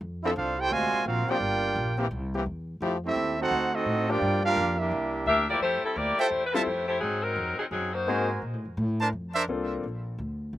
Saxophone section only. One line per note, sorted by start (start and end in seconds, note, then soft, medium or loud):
5.27 5.47 D4 medium
5.27 5.47 G4 medium
5.27 5.47 A#4 medium
5.27 5.47 E5 loud
5.50 5.61 A#3 medium
5.50 5.61 E4 medium
5.50 5.61 G4 medium
5.50 5.61 D5 loud
5.62 5.83 A3 medium
5.62 5.82 E4 medium
5.62 5.83 G4 medium
5.62 5.83 C5 medium
5.85 5.96 G3 medium
5.85 5.96 C4 medium
5.85 5.96 E4 medium
5.85 5.96 A4 medium
5.97 6.19 A#3 medium
5.97 6.19 E4 medium
5.97 6.18 G4 medium
5.97 6.19 D5 medium
6.20 6.45 A3 medium
6.20 6.46 E4 medium
6.20 6.45 G4 medium
6.20 6.45 C5 medium
6.46 6.54 B4 medium
6.54 6.87 A3 medium
6.54 6.87 E4 medium
6.54 6.87 G4 medium
6.54 6.87 C5 medium
6.88 7.00 A3 medium
6.88 7.00 E4 medium
6.88 7.00 G4 medium
6.88 7.00 C5 medium
7.01 7.22 F#3 medium
7.01 7.22 C4 medium
7.01 7.22 D#4 medium
7.01 7.22 G#4 medium
7.23 7.58 F#3 medium
7.23 7.57 C4 medium
7.23 7.58 D#4 medium
7.23 7.59 A#4 medium
7.59 7.65 F#3 medium
7.59 7.64 C4 medium
7.59 7.65 D#4 medium
7.59 7.65 G#4 medium
7.72 7.92 F#3 medium
7.72 7.92 C4 medium
7.72 7.92 D#4 medium
7.72 7.93 G#4 medium
7.94 8.29 A#3 medium
7.94 8.29 D#4 medium
7.94 8.29 F#4 medium
7.94 8.29 C5 medium